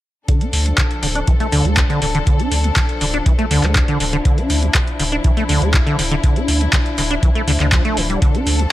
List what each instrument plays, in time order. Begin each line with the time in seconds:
0.28 acid bass D3, string section F3 D4 A4, kick, closed hi-hat
0.41 acid bass D4, closed hi-hat
0.53 sub bass D2, open hi-hat
0.66 acid bass D3, closed hi-hat
0.78 acid bass D3, kick, clap, closed hi-hat
0.91 closed hi-hat
1.03 sub bass D1, acid bass D3, open hi-hat
1.15 acid bass D4, closed hi-hat
1.27 acid bass E3, kick, closed hi-hat
1.40 acid bass A3, closed hi-hat
1.52 sub bass D2, acid bass D3, open hi-hat
1.65 sub bass D2, acid bass A3, closed hi-hat
1.77 acid bass D3, kick, clap, closed hi-hat
1.90 acid bass D3, closed hi-hat
2.02 sub bass D1, acid bass D3, open hi-hat
2.15 acid bass D3, closed hi-hat
2.27 acid bass D3, kick, closed hi-hat
2.39 acid bass D4, closed hi-hat
2.52 sub bass D2, open hi-hat
2.64 acid bass D3, closed hi-hat
2.76 acid bass D3, kick, clap, closed hi-hat
2.89 closed hi-hat
3.01 sub bass D1, acid bass D3, open hi-hat
3.14 acid bass D4, closed hi-hat
3.26 acid bass E3, kick, closed hi-hat
3.39 acid bass A3, closed hi-hat
3.51 sub bass D2, acid bass D3, open hi-hat
3.63 sub bass D2, acid bass A3, clap, closed hi-hat
3.75 acid bass D3, kick, clap, closed hi-hat
3.88 acid bass D3, closed hi-hat
4.00 sub bass D1, acid bass D3, open hi-hat
4.13 acid bass D3, closed hi-hat
4.25 acid bass D3, string section E4, kick, closed hi-hat
4.38 acid bass D4, closed hi-hat
4.50 sub bass D2, open hi-hat
4.63 acid bass D3, closed hi-hat
4.75 acid bass D3, kick, clap, closed hi-hat
4.87 closed hi-hat
4.99 sub bass D1, acid bass D3, open hi-hat
5.12 acid bass D4, closed hi-hat
5.24 acid bass E3, kick, closed hi-hat
5.37 acid bass A3, closed hi-hat
5.49 sub bass D2, acid bass D3, open hi-hat
5.62 sub bass D2, acid bass A3, closed hi-hat
5.74 acid bass D3, kick, clap, closed hi-hat
5.86 acid bass D3, closed hi-hat
5.98 sub bass D1, acid bass D3, open hi-hat
6.11 acid bass D3, closed hi-hat
6.23 acid bass D3, kick, closed hi-hat
6.36 acid bass D4, closed hi-hat
6.48 sub bass D2, open hi-hat
6.61 acid bass D3, closed hi-hat
6.73 acid bass D3, kick, clap, closed hi-hat
6.86 closed hi-hat
6.98 sub bass D1, acid bass D3, open hi-hat
7.11 acid bass D4, closed hi-hat
7.23 acid bass E3, kick, closed hi-hat
7.35 acid bass A3, closed hi-hat
7.47 sub bass D2, acid bass D3, open hi-hat
7.60 sub bass D2, acid bass D3, clap, closed hi-hat
7.72 acid bass F3, kick, clap, closed hi-hat
7.85 acid bass A3, closed hi-hat
7.97 sub bass D1, acid bass D3, open hi-hat
8.10 acid bass G3, closed hi-hat
8.22 acid bass D3, string section A4, kick, closed hi-hat
8.35 acid bass D4, closed hi-hat
8.47 sub bass D2, open hi-hat
8.59 acid bass D3, closed hi-hat